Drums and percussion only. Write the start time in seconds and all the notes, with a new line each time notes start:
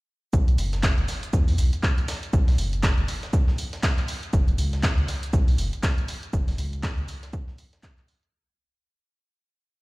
0.33 kick, shaker
0.48 closed hi-hat
0.58 open hi-hat, shaker
0.73 snare, closed hi-hat
0.83 kick, snare, clap, shaker
0.98 closed hi-hat
1.08 snare, open hi-hat, shaker
1.23 closed hi-hat
1.33 kick, shaker
1.48 open hi-hat
1.58 open hi-hat, shaker
1.73 closed hi-hat
1.83 kick, clap, shaker
1.98 closed hi-hat
2.08 snare, open hi-hat, shaker
2.23 closed hi-hat
2.33 kick, shaker
2.48 snare, open hi-hat
2.58 open hi-hat, shaker
2.73 closed hi-hat
2.83 kick, snare, clap, shaker
2.98 closed hi-hat
3.08 open hi-hat, shaker
3.23 snare, closed hi-hat
3.33 kick, shaker
3.48 snare
3.58 open hi-hat, shaker
3.73 snare, closed hi-hat
3.83 kick, snare, clap, shaker
3.98 clap, closed hi-hat
4.08 open hi-hat, shaker
4.23 closed hi-hat
4.33 kick, shaker
4.48 closed hi-hat
4.58 open hi-hat, shaker
4.73 snare, closed hi-hat
4.83 kick, snare, clap, shaker
4.98 closed hi-hat
5.08 snare, open hi-hat, shaker
5.23 closed hi-hat
5.33 kick, shaker
5.48 open hi-hat
5.58 open hi-hat, shaker
5.73 closed hi-hat
5.83 kick, snare, clap, shaker
5.98 closed hi-hat
6.08 open hi-hat, shaker
6.23 closed hi-hat
6.33 kick, shaker
6.48 snare, open hi-hat
6.58 open hi-hat, shaker
6.73 closed hi-hat
6.83 kick, snare, clap, shaker
6.98 closed hi-hat
7.08 open hi-hat, shaker
7.23 snare, closed hi-hat
7.33 kick, shaker
7.48 snare
7.58 open hi-hat, shaker
7.73 snare, closed hi-hat
7.83 kick, snare, clap, shaker
7.98 clap, closed hi-hat
8.08 open hi-hat, shaker
8.23 closed hi-hat